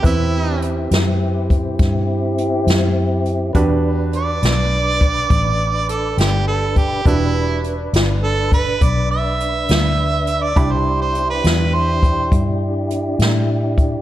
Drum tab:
HH |x-xx-xx-xx-x|x-xx-xx-xx-x|x-xx-xx-xx-x|x-xx-xx-xx-x|
SD |---o--o--o--|---o-----o--|---o-----o--|---o-----o--|
BD |o----oo-----|o----oo----o|o----oo-----|o----oo----o|